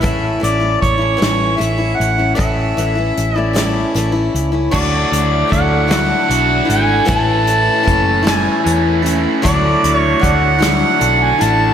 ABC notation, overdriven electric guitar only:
X:1
M:6/8
L:1/8
Q:3/8=51
K:A
V:1 name="Overdriven electric guitar"
z6 | z6 | [D,A,DF]4 [D,A,DF]2 | [A,,E,A,CE]4 [A,,E,A,CE]2 |
[D,A,DF]4 [D,A,DF]2 |]